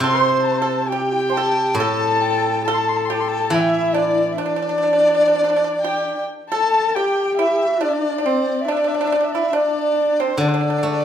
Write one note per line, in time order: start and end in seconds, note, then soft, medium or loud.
0.00 1.77 C3 medium
0.00 0.86 C5 medium
0.00 0.57 C5 medium
0.00 0.43 C6 medium
0.00 0.47 C6 medium
0.43 0.83 A5 medium
0.43 0.54 A5 medium
0.52 0.60 C6 medium
0.58 0.89 A4 medium
0.58 0.82 A5 medium
0.82 0.90 A5 medium
0.88 1.73 G4 medium
0.88 1.15 G4 medium
0.88 1.77 G5 medium
0.88 1.34 G5 medium
1.15 1.26 E4 medium
1.30 1.36 C5 medium
1.30 1.77 A5 loud
1.37 1.77 A4 medium
1.75 4.36 A2 medium
1.75 2.61 A4 medium
1.75 2.63 A5 medium
1.75 2.23 A5 loud
1.80 2.63 A4 medium
2.21 2.67 G5 medium
2.64 3.53 A4 medium
2.64 3.07 A4 medium
2.64 2.76 A5 medium
2.64 3.01 A5 medium
2.74 2.80 C6 medium
2.79 2.90 A5 medium
2.89 2.98 C6 medium
2.97 3.07 A5 medium
3.01 3.09 A5 medium
3.01 3.14 C6 medium
3.07 3.50 G4 medium
3.07 3.44 G5 medium
3.13 3.21 A5 medium
3.20 3.30 C6 medium
3.28 3.56 A5 medium
3.44 3.52 G5 medium
3.50 6.09 E3 medium
3.50 4.37 E4 medium
3.50 3.94 E5 medium
3.54 3.94 E4 medium
3.54 3.62 E5 medium
3.60 3.70 G5 medium
3.69 3.96 E5 medium
3.93 4.35 D4 medium
3.93 4.30 D5 medium
3.93 4.38 D5 medium
4.31 4.40 E5 medium
4.38 6.22 D4 medium
4.38 4.44 D4 medium
4.38 6.27 D5 loud
4.38 5.80 D5 medium
4.46 4.53 D4 soft
4.56 4.61 D4 medium
4.62 4.68 D4 soft
4.69 4.75 D4 soft
4.78 4.82 D4 soft
4.83 4.89 D4 soft
4.93 4.98 D4 soft
5.00 5.05 D4 soft
5.08 5.13 D4 soft
5.14 5.20 D4 soft
5.21 5.26 D4 soft
5.28 5.34 D4 soft
5.36 5.41 D4 soft
5.44 5.49 D4 medium
5.50 5.55 D4 soft
5.56 5.63 D4 medium
5.64 5.70 D4 medium
5.82 6.24 G4 medium
5.82 6.22 G5 medium
6.51 6.92 A4 medium
6.51 6.97 A4 medium
6.51 6.96 A5 medium
6.51 6.93 A5 medium
6.95 7.84 G4 medium
6.95 7.36 G4 medium
6.95 7.37 G5 medium
6.95 7.42 G5 medium
7.37 7.79 E4 medium
7.37 7.78 E5 medium
7.37 7.84 E5 medium
7.81 8.15 D4 medium
7.81 8.26 D4 medium
7.81 7.90 D5 medium
7.81 8.19 D5 medium
7.89 7.95 E5 medium
7.93 8.66 D5 medium
8.18 8.25 D4 soft
8.18 8.28 D5 medium
8.25 8.67 C4 medium
8.25 8.65 C4 medium
8.25 8.63 C5 medium
8.61 8.71 E5 medium
8.65 9.50 D4 medium
8.65 8.75 D4 medium
8.65 8.74 D5 medium
8.65 9.33 D5 medium
8.72 8.81 E5 medium
8.77 8.83 D4 soft
8.77 8.89 D5 medium
8.84 8.90 D4 medium
8.84 8.97 E5 medium
8.94 8.99 D4 medium
8.94 9.06 D5 medium
9.01 9.06 D4 medium
9.01 9.15 E5 medium
9.07 9.11 D4 medium
9.12 9.19 D4 medium
9.12 9.25 D5 medium
9.21 9.27 D4 soft
9.21 9.34 E5 medium
9.32 9.53 E4 medium
9.32 9.49 D5 medium
9.32 9.56 E5 medium
9.50 10.35 D4 medium
9.50 10.14 D4 medium
9.50 9.55 E5 medium
9.54 10.22 D5 medium
10.20 10.39 C4 medium
10.20 10.40 C5 medium
10.20 10.41 C5 medium
10.38 11.05 D3 medium
10.38 11.05 D4 medium
10.38 10.47 D4 medium
10.38 11.05 D5 medium
10.38 10.50 D5 medium
10.48 10.53 D4 soft
10.48 10.57 C5 soft
10.54 10.60 D4 medium
10.54 11.05 D5 medium
10.61 10.68 D4 soft
10.70 10.77 D4 soft
10.78 10.83 D4 soft
10.83 11.05 A3 soft
10.83 10.91 D4 soft
10.93 10.99 D4 soft
11.00 11.05 D4 soft